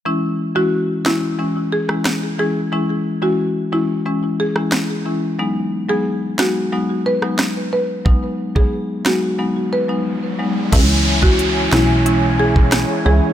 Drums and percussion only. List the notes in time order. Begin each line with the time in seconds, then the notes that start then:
1.06 cross-stick, snare
1.89 cross-stick
2.05 cross-stick, snare
4.56 cross-stick
4.72 cross-stick, snare
6.39 cross-stick, snare
7.22 cross-stick
7.39 cross-stick, snare
8.06 kick
8.56 kick
9.06 cross-stick, snare
10.73 kick, closed hi-hat, crash
11.23 kick
11.39 closed hi-hat
11.73 cross-stick, snare
12.06 closed hi-hat
12.56 kick
12.72 cross-stick, snare, closed hi-hat